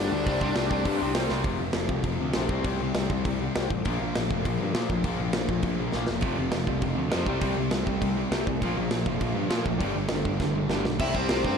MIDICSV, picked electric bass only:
0, 0, Header, 1, 2, 480
1, 0, Start_track
1, 0, Tempo, 298063
1, 424, Time_signature, 4, 2, 24, 8
1, 18645, End_track
2, 0, Start_track
2, 0, Title_t, "Picked electric bass"
2, 0, Program_c, 0, 34
2, 0, Note_on_c, 0, 31, 93
2, 168, Note_off_c, 0, 31, 0
2, 183, Note_on_c, 0, 38, 101
2, 414, Note_off_c, 0, 38, 0
2, 431, Note_on_c, 0, 36, 99
2, 658, Note_off_c, 0, 36, 0
2, 670, Note_on_c, 0, 36, 103
2, 882, Note_off_c, 0, 36, 0
2, 892, Note_on_c, 0, 36, 87
2, 1358, Note_off_c, 0, 36, 0
2, 1379, Note_on_c, 0, 43, 109
2, 1610, Note_off_c, 0, 43, 0
2, 1634, Note_on_c, 0, 36, 94
2, 1848, Note_off_c, 0, 36, 0
2, 1857, Note_on_c, 0, 36, 86
2, 2089, Note_off_c, 0, 36, 0
2, 2099, Note_on_c, 0, 36, 87
2, 2329, Note_on_c, 0, 29, 93
2, 2353, Note_off_c, 0, 36, 0
2, 2525, Note_off_c, 0, 29, 0
2, 2563, Note_on_c, 0, 29, 87
2, 2761, Note_off_c, 0, 29, 0
2, 2804, Note_on_c, 0, 29, 88
2, 3002, Note_off_c, 0, 29, 0
2, 3046, Note_on_c, 0, 36, 88
2, 3243, Note_off_c, 0, 36, 0
2, 3293, Note_on_c, 0, 29, 95
2, 3487, Note_off_c, 0, 29, 0
2, 3533, Note_on_c, 0, 38, 86
2, 3728, Note_off_c, 0, 38, 0
2, 3788, Note_on_c, 0, 34, 84
2, 3977, Note_off_c, 0, 34, 0
2, 4015, Note_on_c, 0, 36, 93
2, 4209, Note_off_c, 0, 36, 0
2, 4261, Note_on_c, 0, 36, 99
2, 4453, Note_off_c, 0, 36, 0
2, 4506, Note_on_c, 0, 36, 88
2, 4696, Note_off_c, 0, 36, 0
2, 4741, Note_on_c, 0, 36, 94
2, 4933, Note_off_c, 0, 36, 0
2, 4996, Note_on_c, 0, 36, 84
2, 5182, Note_off_c, 0, 36, 0
2, 5236, Note_on_c, 0, 36, 97
2, 5615, Note_off_c, 0, 36, 0
2, 5730, Note_on_c, 0, 36, 88
2, 5911, Note_off_c, 0, 36, 0
2, 5967, Note_on_c, 0, 33, 86
2, 6149, Note_off_c, 0, 33, 0
2, 6210, Note_on_c, 0, 34, 98
2, 6392, Note_off_c, 0, 34, 0
2, 6455, Note_on_c, 0, 34, 98
2, 6635, Note_off_c, 0, 34, 0
2, 6711, Note_on_c, 0, 34, 90
2, 6884, Note_off_c, 0, 34, 0
2, 6942, Note_on_c, 0, 29, 91
2, 7119, Note_off_c, 0, 29, 0
2, 7180, Note_on_c, 0, 34, 99
2, 7358, Note_off_c, 0, 34, 0
2, 7416, Note_on_c, 0, 43, 91
2, 7596, Note_off_c, 0, 43, 0
2, 7634, Note_on_c, 0, 46, 86
2, 7823, Note_off_c, 0, 46, 0
2, 7887, Note_on_c, 0, 34, 86
2, 8071, Note_off_c, 0, 34, 0
2, 8129, Note_on_c, 0, 34, 94
2, 8312, Note_off_c, 0, 34, 0
2, 8369, Note_on_c, 0, 34, 93
2, 8552, Note_off_c, 0, 34, 0
2, 8621, Note_on_c, 0, 34, 86
2, 8800, Note_off_c, 0, 34, 0
2, 8838, Note_on_c, 0, 34, 91
2, 9026, Note_off_c, 0, 34, 0
2, 9079, Note_on_c, 0, 34, 94
2, 9459, Note_off_c, 0, 34, 0
2, 9571, Note_on_c, 0, 34, 90
2, 9754, Note_off_c, 0, 34, 0
2, 9803, Note_on_c, 0, 28, 93
2, 9989, Note_off_c, 0, 28, 0
2, 10024, Note_on_c, 0, 29, 90
2, 10218, Note_off_c, 0, 29, 0
2, 10287, Note_on_c, 0, 29, 89
2, 10472, Note_off_c, 0, 29, 0
2, 10523, Note_on_c, 0, 29, 88
2, 10709, Note_off_c, 0, 29, 0
2, 10749, Note_on_c, 0, 36, 84
2, 10942, Note_off_c, 0, 36, 0
2, 10992, Note_on_c, 0, 29, 94
2, 11184, Note_off_c, 0, 29, 0
2, 11239, Note_on_c, 0, 38, 89
2, 11428, Note_off_c, 0, 38, 0
2, 11502, Note_on_c, 0, 41, 87
2, 11682, Note_off_c, 0, 41, 0
2, 11701, Note_on_c, 0, 36, 84
2, 11897, Note_off_c, 0, 36, 0
2, 11948, Note_on_c, 0, 36, 94
2, 12141, Note_off_c, 0, 36, 0
2, 12206, Note_on_c, 0, 36, 95
2, 12392, Note_off_c, 0, 36, 0
2, 12430, Note_on_c, 0, 36, 92
2, 12622, Note_off_c, 0, 36, 0
2, 12675, Note_on_c, 0, 36, 94
2, 12866, Note_off_c, 0, 36, 0
2, 12913, Note_on_c, 0, 36, 94
2, 13297, Note_off_c, 0, 36, 0
2, 13387, Note_on_c, 0, 36, 94
2, 13580, Note_off_c, 0, 36, 0
2, 13643, Note_on_c, 0, 36, 85
2, 13831, Note_off_c, 0, 36, 0
2, 13892, Note_on_c, 0, 34, 96
2, 14076, Note_off_c, 0, 34, 0
2, 14126, Note_on_c, 0, 34, 91
2, 14312, Note_off_c, 0, 34, 0
2, 14352, Note_on_c, 0, 34, 90
2, 14544, Note_off_c, 0, 34, 0
2, 14595, Note_on_c, 0, 29, 92
2, 14785, Note_off_c, 0, 29, 0
2, 14833, Note_on_c, 0, 34, 102
2, 15024, Note_off_c, 0, 34, 0
2, 15049, Note_on_c, 0, 43, 94
2, 15250, Note_off_c, 0, 43, 0
2, 15297, Note_on_c, 0, 46, 86
2, 15494, Note_off_c, 0, 46, 0
2, 15561, Note_on_c, 0, 34, 90
2, 15749, Note_off_c, 0, 34, 0
2, 15793, Note_on_c, 0, 31, 93
2, 15984, Note_off_c, 0, 31, 0
2, 16041, Note_on_c, 0, 31, 92
2, 16229, Note_off_c, 0, 31, 0
2, 16267, Note_on_c, 0, 31, 90
2, 16460, Note_off_c, 0, 31, 0
2, 16510, Note_on_c, 0, 31, 84
2, 16702, Note_off_c, 0, 31, 0
2, 16749, Note_on_c, 0, 31, 93
2, 17133, Note_off_c, 0, 31, 0
2, 17202, Note_on_c, 0, 31, 90
2, 17404, Note_off_c, 0, 31, 0
2, 17468, Note_on_c, 0, 35, 90
2, 17659, Note_off_c, 0, 35, 0
2, 17718, Note_on_c, 0, 36, 97
2, 17943, Note_off_c, 0, 36, 0
2, 17954, Note_on_c, 0, 36, 92
2, 18181, Note_off_c, 0, 36, 0
2, 18196, Note_on_c, 0, 36, 87
2, 18422, Note_off_c, 0, 36, 0
2, 18440, Note_on_c, 0, 43, 89
2, 18645, Note_off_c, 0, 43, 0
2, 18645, End_track
0, 0, End_of_file